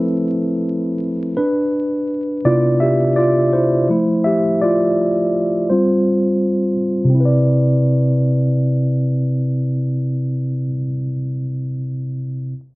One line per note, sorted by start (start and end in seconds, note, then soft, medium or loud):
0.00 1.32 F3 medium
0.00 1.32 A3 soft
0.00 0.96 C4 medium
0.00 1.37 E4 medium
0.00 0.95 A4 medium
0.00 1.36 B4 medium
1.37 2.41 D4 medium
1.37 2.47 B4 medium
2.45 2.94 C3 medium
2.45 2.94 B3 medium
2.45 2.95 E4 medium
2.45 2.78 F4 medium
2.45 2.78 D5 medium
2.80 3.14 G4 medium
2.80 3.17 E5 loud
3.16 3.50 F4 medium
3.16 3.53 D5 medium
3.53 3.89 E4 medium
3.53 4.20 C5 medium
3.89 4.39 F3 soft
3.89 4.39 A3 soft
3.89 4.39 E4 medium
4.24 4.42 G4 medium
4.24 4.40 E5 medium
4.61 5.66 F4 medium
4.61 5.65 D5 medium
5.70 6.74 G3 medium
5.70 6.74 C4 soft
5.70 6.74 F4 medium
5.70 6.73 C5 medium
7.05 10.65 C3 medium
7.10 10.71 C4 medium
7.15 10.76 E4 medium
7.20 10.81 B4 medium
7.25 10.86 D5 medium